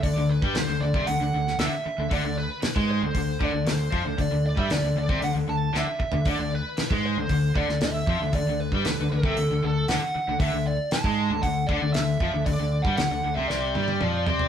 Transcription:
<<
  \new Staff \with { instrumentName = "Lead electric guitar" } { \time 4/4 \key d \mixolydian \tempo 4 = 116 d''8 b'8 c''8 d''8 fis''4 e''4 | d''8 b'4 c''4 d''8 c''4 | d''8 d''16 e''16 d''8 d''8 fis''8 a''8 e''4 | d''8 b'4 c''4 d''8 e''4 |
d''8 b'4 a'4 a'8 fis''4 | e''8 d''8 a''4 fis''8 d''8 e''4 | d''8. fis''16 fis''8. e''16 d''4. d''8 | }
  \new Staff \with { instrumentName = "Overdriven electric guitar" } { \clef bass \time 4/4 \key d \mixolydian d16 d8 g16 d16 d16 d16 c16 d16 d16 d8 d16 r8 d16 | d16 d8 r8 gis8 d16 d8 d16 d16 d8 f16 d16 | d16 d8 g16 d16 d16 d16 c16 d16 d16 d8 d16 r8 d16 | d16 d8 r8 gis8 d16 d8 d16 d16 d8 f16 d16 |
d16 d8 g16 d16 d16 d16 c16 d16 d16 d8 d16 r8 d16 | d16 d8 r8 gis8 d16 d8 d16 d16 d8 f16 d16 | d16 d8 g16 d16 d16 d16 c16 c8 g8 f8 c'8 | }
  \new Staff \with { instrumentName = "Overdriven electric guitar" } { \clef bass \time 4/4 \key d \mixolydian d16 d8 g16 d16 d16 d16 c16 d16 d16 d8 d16 r8 d16 | d16 d8 r8 gis8 d16 d8 d16 d16 d8 f16 d16 | d16 d8 g16 d16 d16 d16 c16 d16 d16 d8 d16 r8 d16 | d16 d8 r8 gis8 d16 d8 d16 d16 d8 f16 d16 |
d16 d8 g16 d16 d16 d16 c16 d16 d16 d8 d16 r8 d16 | d16 d8 r8 gis8 d16 d8 d16 d16 d8 f16 d16 | d16 d8 g16 d16 d16 d16 c16 c8 g8 f8 c'8 | }
  \new Staff \with { instrumentName = "Fingered electric bass" } { \clef bass \time 4/4 \key d \mixolydian d,16 d,8 g,16 d,16 d,16 d,16 c,16 d,16 d,16 d,8 d,16 r8 d,16 | d,16 d,8 r8 gis,8 d,16 d,8 d,16 d,16 d,8 f,16 d,16 | d,16 d,8 g,16 d,16 d,16 d,16 c,16 d,16 d,16 d,8 d,16 r8 d,16 | d,16 d,8 r8 gis,8 d,16 d,8 d,16 d,16 d,8 f,16 d,16 |
d,16 d,8 g,16 d,16 d,16 d,16 c,16 d,16 d,16 d,8 d,16 r8 d,16 | d,16 d,8 r8 gis,8 d,16 d,8 d,16 d,16 d,8 f,16 d,16 | d,16 d,8 g,16 d,16 d,16 d,16 c,16 c,8 g,8 f,8 c8 | }
  \new DrumStaff \with { instrumentName = "Drums" } \drummode { \time 4/4 <hho bd>8. bd16 <hho sn>8. bd16 hho8. sn16 <hho sn>4 | <hho bd>4 <hho sn>16 bd8. <hho bd>8 bd8 <hho sn>8 bd8 | <hho bd>8. bd16 <hho sn>8. bd16 hho4 sn8 bd16 tomfh16 | <hho bd>4 <hho sn>16 bd8. <hho bd>8 bd16 sn16 <hho sn>8 bd8 |
<hho bd>8. bd16 <hho sn>8. bd16 hho4 <hho sn>4 | <hho bd>4 <hho sn>16 bd8. <hho bd>8 bd8 <hho sn>8 bd8 | <hho bd>8. bd16 <hho sn>4 sn8 tommh16 tommh16 toml8 tomfh16 tomfh16 | }
>>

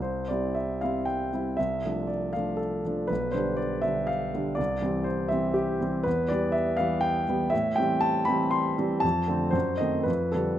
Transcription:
<<
  \new Staff \with { instrumentName = "Grand piano" } { \time 3/4 \key c \major \tempo 4 = 119 c''8 d''8 e''8 f''8 g''4 | e''4 d''8 f''8 a'4 | b'8 c''8 d''8 e''8 f''4 | d''4 c''8 e''8 g'4 |
b'8 d''8 e''8 f''8 g''4 | e''8 g''8 a''8 b''8 c'''4 | a''4 c''8 dis''8 b'8 a'8 | }
  \new Staff \with { instrumentName = "Grand piano" } { \clef bass \time 3/4 \key c \major c,8 <g c' e'>4 <g c' e'>4 <g c' e'>8 | c,8 <f a d'>4 <f a d'>4 <f a d'>8 | b,,8 <d g d'>4 <d g d'>4 <d g d'>8 | c,8 <e g c'>4 <e g c'>4 <e g c'>8 |
e,8 <e g b>4 <e g b>4 <e g b>8 | a,8 <e g c'>4 <e g c'>4 <e g c'>8 | f,8 <d a c'>8 fis,8 <dis a c'>8 f,8 <d g d'>8 | }
>>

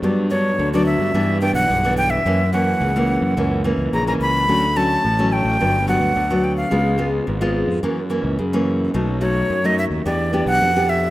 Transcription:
<<
  \new Staff \with { instrumentName = "Flute" } { \time 4/4 \key fis \phrygian \tempo 4 = 108 r8 cis''8. d''16 e''4 g''16 fis''8. g''16 e''16~ | e''8 fis''2 r8 ais''16 ais''16 b''8~ | b''8 a''4 g''4 fis''4 g''16 eis''16~ | eis''8. r2. r16 |
r8 cis''8. dis''16 e''8 d''8. fis''8. e''8 | }
  \new Staff \with { instrumentName = "Nylon-string guitar" } { \time 4/4 \key fis \phrygian << { <fis b d'>8 <fis b d'>8. <fis b d'>8. <e b d'>8 <e b d'>8. <e b d'>8. | <e ais cis'>16 r16 <e ais cis'>8. <e ais cis'>8. <e ais cis'>8 <e ais cis'>8. <e ais cis'>8. | <fis a cis'>16 r16 <fis a cis'>8 r16 <fis a cis'>8. <fis b d'>16 r16 <fis b d'>8. <fis b d'>8. | <gis b eis'>8 <gis b eis'>8. <gis b eis'>8. <e ais cis'>16 r16 <e ais cis'>8 r16 <e ais cis'>8. |
<fis a dis'>8 <fis a dis'>8. <fis a dis'>8. <b d' g'>8 <b d' g'>8. <b d' g'>8. | } \\ { g,4 d4 g,4 g,4 | fis,4 cis4 fis,4 cis4 | d4 a,4 g,4 d4 | cis4 gis,4 fis,4 cis4 |
b,4 fis,4 e4 b,4 | } >> }
  \new Staff \with { instrumentName = "Fingered electric bass" } { \clef bass \time 4/4 \key fis \phrygian g,4 d,8. g,16 g,8. b,,16 b,,4 | fis,4 cis,8. fis,16 cis,8. cis,16 ais,,8 cis,8 | d,4 a,,8. a,,16 g,,8. d,16 d,4 | cis,4 gis,,8. eis,16 fis,8. cis,16 fis,4 |
b,,4 fis,8. dis,16 e,8. b,,16 eis,4 | }
>>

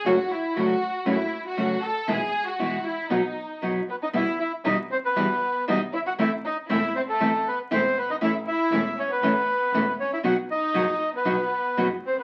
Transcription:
<<
  \new Staff \with { instrumentName = "Bandoneon" } { \time 4/4 \key b \mixolydian \tempo 4 = 118 r1 | r2. r8 b'16 dis''16 | \key e \minor e''8 e''8 dis''8 c''16 b'4~ b'16 dis''8 e''16 fis''16 | e''8 dis''8 e''8 c''16 a'8. b'8 c''8 b'16 dis''16 |
e''8 e''4 cis''16 b'4.~ b'16 cis''16 e''16 | fis''8 dis''4~ dis''16 b'4. r16 c''16 b'16 | }
  \new Staff \with { instrumentName = "Violin section" } { \time 4/4 \key b \mixolydian fis'8 e'8 fis'4 e'8. fis'8. a'8 | gis'8. fis'8. e'8 dis'4 r8 b16 dis'16 | \key e \minor e'8 e'8 dis'8 c'16 b4~ b16 dis'8 e'16 fis'16 | e'8 dis'8 e'8 c'16 a8. b8 c'8 b16 dis'16 |
e'8 e'4 cis'16 b4.~ b16 cis'16 e'16 | fis'8 dis'4~ dis'16 b4. r16 c'16 b16 | }
  \new Staff \with { instrumentName = "String section" } { \time 4/4 \key b \mixolydian <a cis' fis'>8 r8 <a cis' fis'>8 r8 <a cis' fis'>8 r8 <a cis' fis'>8 r8 | <gis b e'>8 r8 <gis b e'>8 r8 <fis b dis'>8 r8 <fis b dis'>8 r8 | \key e \minor r1 | r1 |
r1 | r1 | }
  \new Staff \with { instrumentName = "Nylon-string guitar" } { \time 4/4 \key b \mixolydian <cis fis a cis' fis'>8 r8 <cis fis a cis' fis'>8 r8 <cis fis a cis' fis'>8 r8 <cis fis a cis' fis'>8 r8 | <b, e gis b e'>8 r8 <b, e gis b e'>8 r8 <b, fis b dis' fis'>8 r8 <b, fis b dis' fis'>8 r8 | \key e \minor <b, e g b e'>8 r8 <b, e g b e'>8 r8 <b, e g b e'>8 r8 <b, e g b e'>8 r8 | <e a c' e'>8 r8 <e a c' e'>8 r8 <e a c' e'>8 r8 <e a c' e'>8 r8 |
<e a cis' e'>8 r8 <e a cis' e'>8 r8 <e a cis' e'>8 r8 <e a cis' e'>8 r8 | <b, fis b dis' fis'>8 r8 <b, fis b dis' fis'>8 r8 <b, fis b dis' fis'>8 r8 <b, fis b dis' fis'>8 r8 | }
  \new Staff \with { instrumentName = "Double bass" } { \clef bass \time 4/4 \key b \mixolydian fis,,8 r8 cis,8 r8 fis,,8 r8 cis,8 r8 | b,,8 r8 b,,8 r8 b,,8 r8 fis,,8 r8 | \key e \minor e,8 r8 b,,8 r8 e,8 r8 b,,8 g,,8 | a,,8 r8 e,,8 r8 a,,8 r8 e,,8 g,,8 |
a,,8 r8 e,,8 r8 a,,8 r8 e,,8 r8 | b,,8 r8 fis,,8 r8 b,,8 r8 fis,,8 a,,8 | }
>>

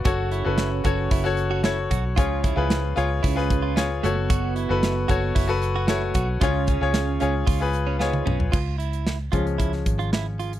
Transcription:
<<
  \new Staff \with { instrumentName = "Grand piano" } { \time 4/4 \key cis \phrygian \tempo 4 = 113 <fis' a' cis''>8 r16 <fis' a' b'>8 r16 <fis' a' cis''>8 r16 <fis' a' cis''>8 r16 <fis' a' cis''>8. r16 | <eis' gis' cis''>8 r16 <eis' gis' b'>8 r16 <eis' gis' cis''>8 r16 <eis' gis' b'>8 r16 <eis' gis' cis''>8 <fis' a' cis''>8~ | <fis' a' cis''>8 r16 <fis' a' b'>8 r16 <fis' a' cis''>8 r16 <fis' a' b'>8 r16 <fis' a' cis''>8. r16 | <eis' gis' cis''>8 r16 <eis' gis' cis''>8 r16 <eis' gis' cis''>8 r16 <eis' gis' b'>8 r16 <eis' gis' cis''>8. r16 |
r1 | }
  \new Staff \with { instrumentName = "Grand piano" } { \clef bass \time 4/4 \key cis \phrygian r1 | cis4. r2 r8 | r1 | cis4. r2 r8 |
r4. <eis gis cis'>2~ <eis gis cis'>8 | }
  \new Staff \with { instrumentName = "Clean electric guitar" } { \time 4/4 \key cis \phrygian fis'8 e'8. r16 fis'16 r16 e'16 r8 fis'16 e'16 r16 fis'16 r16 | eis'8 e'8. r16 eis'16 r16 e'16 r8 eis'16 cis'16 r16 a16 r16 | fis'8 e'8. r16 fis'16 r16 e'16 r8 fis'16 e'16 r16 fis'16 r16 | eis'8 cis'8. r16 cis'16 r16 eis'16 r8 cis'16 b16 r16 cis'16 r16 |
eis'8 e'8. r16 eis'16 r16 e'16 r8 eis'16 e'16 r16 eis'16 r16 | }
  \new Staff \with { instrumentName = "French horn section" } { \clef bass \time 4/4 \key cis \phrygian <cis cis'>2.~ <cis cis'>8 r8 | <eis eis'>4. r8 <cis cis'>4 r8 <b, b>8~ | <b, b>2~ <b, b>8 r8 <a, a>8 r8 | <cis cis'>2~ <cis cis'>8 r8 <gis, gis>8 r8 |
r1 | }
  \new Staff \with { instrumentName = "Fingered electric bass" } { \clef bass \time 4/4 \key cis \phrygian fis,,8. fis,,8. fis,,8 fis,,4. b,,8 | cis,8. cis,8. cis,8 cis,4. fis,,8~ | fis,,8. fis,,8. fis,,8 fis,,4. b,,8 | cis,8. cis,8. cis,8 cis,4. b,,8 |
cis,4. cis,4 gis,,4. | }
  \new DrumStaff \with { instrumentName = "Drums" } \drummode { \time 4/4 <hho hhp bd>8 <hho hhp>8 <hho hhp sn>8 <hho hhp bd>8 <hho hhp bd>8 <hho hhp>8 <hho hhp sn>8 <hho hhp bd>8 | <hho hhp bd>8 <hho hhp bd>8 <hho hhp sn>8 <hho hhp>8 <hho hhp bd>16 sn16 <hho hhp bd>8 <hho hhp sn>8 <hho hhp>8 | <hho hhp bd>8 <hho hhp>8 <hho hhp sn>8 <hho hhp bd>8 <hho hhp bd>8 <hho hhp>8 <hho hhp sn>8 <hho hhp bd>8 | <hho hhp bd>8 <hho hhp bd>8 <hho hhp sn>8 <hho hhp>8 <hho hhp bd>8 <hho hhp>8 sn16 tommh16 toml16 tomfh16 |
<cymc bd>8 hh16 hh16 sn8 <hh bd>16 hh16 <hh bd>16 <hh sn>16 <hh bd>16 hh16 sn8 hh16 hh16 | }
>>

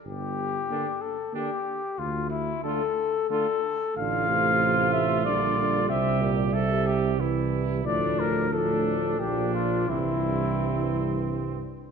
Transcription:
<<
  \new Staff \with { instrumentName = "Trumpet" } { \time 3/4 \key d \minor \tempo 4 = 92 g'4. a'8 g'4 | f'8 e'8 a'4 a'4 | \key c \mixolydian f''4. e''8 d''4 | e''8 r8 e''4 r4 |
d''8 bes'8 a'4 g'8 f'8 | e'2 r4 | }
  \new Staff \with { instrumentName = "Trumpet" } { \time 3/4 \key d \minor r4 d'4 d'4 | r4 f'4 f'4 | \key c \mixolydian f'2. | g'4 a'8 g'8 e'4 |
d'4 d'4 d'4 | c'2~ c'8 r8 | }
  \new Staff \with { instrumentName = "French horn" } { \clef bass \time 3/4 \key d \minor r4 bes4 bes4 | r4 a4 a4 | \key c \mixolydian a2 g4~ | g2 g4 |
f4 f4 f4 | e2~ e8 r8 | }
  \new Staff \with { instrumentName = "Trombone" } { \clef bass \time 3/4 \key d \minor r4 d4 d4 | r4 d4 d4 | \key c \mixolydian d8 c4. d8 d8 | c8 bes,8 c4 e4 |
a,4 a,4 bes,4 | g,2~ g,8 r8 | }
  \new Staff \with { instrumentName = "Tuba" } { \clef bass \time 3/4 \key d \minor g,,4 r2 | d,4 r2 | \key c \mixolydian a,,2 bes,,4 | c,2. |
d,2 bes,,4 | c,2~ c,8 r8 | }
>>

